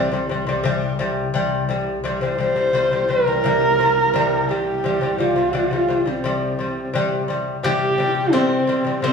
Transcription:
0.00 2.04 C2 medium
0.00 0.78 C4 medium
0.12 0.26 C3 medium
0.12 0.27 G3 medium
0.29 0.43 C3 medium
0.29 0.44 G3 medium
0.47 0.61 C3 medium
0.47 0.62 G3 medium
0.64 0.92 C3 loud
0.64 0.93 G3 loud
0.99 1.27 C3 medium
0.99 1.28 G3 medium
1.34 1.62 C3 loud
1.34 1.63 G3 loud
1.69 1.97 C3 medium
1.69 1.98 G3 medium
2.04 7.71 C2 medium
2.04 2.18 C3 medium
2.04 2.19 G3 loud
2.21 2.35 C3 medium
2.21 2.36 G3 medium
2.21 3.11 C5 loud
2.38 2.53 C3 medium
2.38 2.54 G3 medium
2.56 2.70 C3 medium
2.56 2.71 G3 medium
2.73 2.88 C3 medium
2.73 2.88 G3 loud
2.91 3.05 C3 medium
2.91 3.06 G3 medium
3.09 3.23 C3 medium
3.09 3.24 G3 medium
3.09 4.51 A#4 loud
3.26 3.40 C3 medium
3.26 3.41 G3 medium
3.44 3.72 C3 medium
3.44 3.73 G3 loud
3.79 4.07 C3 medium
3.79 4.08 G3 medium
4.14 4.42 C3 loud
4.14 4.43 G3 loud
4.49 4.77 C3 medium
4.49 4.78 G3 medium
4.49 5.21 G4 loud
4.84 4.98 C3 medium
4.84 4.99 G3 medium
5.01 5.15 C3 medium
5.01 5.16 G3 medium
5.18 5.33 C3 medium
5.18 5.34 G3 medium
5.18 6.09 F4 medium
5.36 5.50 C3 medium
5.36 5.51 G3 medium
5.53 5.67 C3 medium
5.53 5.68 G3 medium
5.71 5.85 C3 medium
5.71 5.86 G3 medium
5.88 6.03 C3 medium
5.88 6.04 G3 medium
6.06 6.20 C3 medium
6.06 6.21 G3 medium
6.06 7.36 C4 medium
6.24 6.52 C3 medium
6.24 6.53 G3 loud
6.59 6.87 C3 medium
6.59 6.88 G3 medium
6.94 7.22 C3 medium
6.94 7.23 G3 loud
7.28 7.56 C3 medium
7.28 7.57 G3 medium
7.63 7.91 C3 medium
7.63 7.92 G3 loud
7.63 8.34 G4 loud
7.63 9.13 G4 medium
7.98 8.26 C3 medium
7.98 8.27 G3 medium
8.32 8.61 C3 medium
8.32 8.62 G3 loud
8.32 9.02 C4 loud
8.32 9.03 C4 medium
8.67 8.82 C3 medium
8.67 8.83 G3 medium
8.85 8.99 C3 medium
8.85 9.00 G3 medium
9.02 9.13 C3 medium
9.02 9.13 G3 loud
9.02 9.13 C4 medium

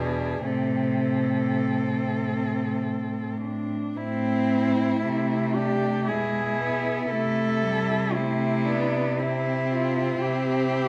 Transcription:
0.00 0.44 E2 soft
0.00 0.45 B2 soft
0.00 0.47 D4 soft
0.00 0.48 G#4 soft
0.46 3.72 A2 soft
0.46 2.78 C3 soft
0.46 3.76 C4 soft
0.46 3.41 A4 soft
3.41 3.98 D4 soft
3.97 5.05 A2 soft
3.97 4.99 C4 soft
3.97 5.00 C4 soft
3.97 5.56 E4 medium
5.03 6.09 C3 soft
5.03 6.09 A3 soft
5.03 5.57 C4 soft
5.54 6.07 D4 soft
5.54 6.09 G4 medium
6.07 7.10 B2 soft
6.07 6.58 G#3 soft
6.07 7.09 E4 soft
6.07 7.10 G#4 soft
6.58 7.13 B3 soft
7.10 10.18 C3 soft
7.10 7.64 A3 soft
7.10 8.15 E4 soft
7.10 8.16 A4 medium
7.63 8.17 G3 soft
8.14 8.69 A3 soft
8.14 8.67 C4 soft
8.14 9.19 E4 medium
8.65 9.21 B3 soft
8.65 9.20 D4 soft
9.18 10.88 C4 soft
9.18 10.22 E4 soft
9.69 10.23 F4 medium
10.21 10.88 C3 soft
10.21 10.88 E4 soft
10.21 10.88 G4 medium

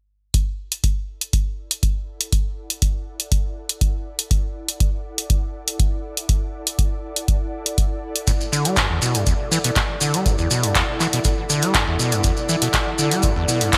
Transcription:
0.34 13.78 E4 medium
0.34 kick loud
0.34 closed hi-hat medium
0.47 13.78 A4 medium
0.72 13.78 D5 medium
0.72 closed hi-hat medium
0.84 kick loud
0.84 closed hi-hat medium
1.21 closed hi-hat medium
1.29 13.78 F#5 medium
1.33 kick loud
1.33 closed hi-hat soft
1.71 closed hi-hat medium
1.83 kick loud
1.83 closed hi-hat medium
2.21 closed hi-hat medium
2.32 kick loud
2.32 closed hi-hat soft
2.70 closed hi-hat medium
2.82 kick loud
2.82 closed hi-hat medium
3.20 closed hi-hat medium
3.32 kick loud
3.32 closed hi-hat soft
3.69 closed hi-hat medium
3.81 kick loud
3.81 closed hi-hat medium
4.19 closed hi-hat medium
4.31 kick loud
4.31 closed hi-hat soft
4.68 closed hi-hat medium
4.80 kick loud
4.80 closed hi-hat soft
5.18 closed hi-hat medium
5.30 kick loud
5.30 closed hi-hat soft
5.68 closed hi-hat medium
5.80 kick loud
5.80 closed hi-hat soft
6.17 closed hi-hat medium
6.29 kick loud
6.29 closed hi-hat soft
6.67 closed hi-hat medium
6.79 kick loud
6.79 closed hi-hat soft
7.16 closed hi-hat medium
7.28 kick loud
7.28 closed hi-hat soft
7.66 closed hi-hat medium
7.78 kick loud
7.78 closed hi-hat soft
8.16 closed hi-hat medium
8.27 8.32 A2 medium
8.27 kick loud
8.27 closed hi-hat soft
8.27 maracas soft
8.41 maracas soft
8.52 8.67 D3 medium
8.52 maracas loud
8.65 8.79 G3 loud
8.65 closed hi-hat medium
8.65 maracas soft
8.76 8.88 F#2 loud
8.76 kick loud
8.76 clap loud
8.76 closed hi-hat soft
8.76 maracas soft
8.90 9.00 E2 medium
9.02 9.16 B2 medium
9.02 maracas medium
9.15 9.25 G2 medium
9.15 closed hi-hat medium
9.15 maracas soft
9.26 9.34 E2 medium
9.26 kick loud
9.26 closed hi-hat soft
9.26 maracas medium
9.51 9.59 E3 loud
9.51 maracas medium
9.64 9.71 B2 medium
9.64 closed hi-hat medium
9.64 maracas soft
9.76 9.80 A2 medium
9.76 kick loud
9.76 clap loud
9.76 closed hi-hat soft
9.76 maracas soft
10.01 10.15 D3 medium
10.01 maracas medium
10.14 10.27 G3 medium
10.14 closed hi-hat medium
10.14 maracas soft
10.26 10.36 F#2 loud
10.26 kick loud
10.26 closed hi-hat soft
10.26 maracas soft
10.38 10.49 E2 medium
10.38 maracas soft
10.51 10.65 B2 medium
10.51 maracas medium
10.63 10.73 G2 medium
10.63 closed hi-hat medium
10.63 maracas soft
10.75 10.83 E2 medium
10.75 kick loud
10.75 clap loud
10.75 closed hi-hat soft
10.75 maracas soft
11.00 11.07 E3 loud
11.00 clap soft
11.00 maracas medium
11.13 11.20 B2 medium
11.13 closed hi-hat medium
11.13 maracas soft
11.24 11.29 A2 medium
11.24 kick loud
11.24 closed hi-hat soft
11.24 maracas medium
11.50 11.64 D3 medium
11.50 maracas medium
11.62 11.76 G3 loud
11.62 closed hi-hat medium
11.62 maracas soft
11.74 11.85 F#2 loud
11.74 kick loud
11.74 clap loud
11.74 closed hi-hat soft
11.74 maracas soft
11.88 11.97 E2 medium
11.99 12.14 B2 medium
11.99 maracas medium
12.12 12.22 G2 medium
12.12 closed hi-hat medium
12.12 maracas soft
12.24 12.31 E2 medium
12.24 kick loud
12.24 closed hi-hat medium
12.24 maracas medium
12.37 maracas soft
12.49 12.56 E3 loud
12.49 maracas medium
12.62 12.68 B2 medium
12.62 closed hi-hat medium
12.62 maracas soft
12.73 12.78 A2 medium
12.73 kick loud
12.73 clap loud
12.73 closed hi-hat medium
12.73 maracas soft
12.98 13.13 D3 medium
12.98 maracas medium
13.11 13.25 G3 loud
13.11 closed hi-hat medium
13.11 maracas soft
13.22 13.34 F#2 loud
13.22 kick loud
13.22 closed hi-hat medium
13.22 maracas soft
13.36 13.46 E2 medium
13.48 13.63 B2 medium
13.48 maracas medium
13.61 13.71 G2 medium
13.61 closed hi-hat medium
13.61 maracas soft
13.73 13.78 E2 medium
13.73 kick loud
13.73 clap loud
13.73 closed hi-hat medium
13.73 maracas soft

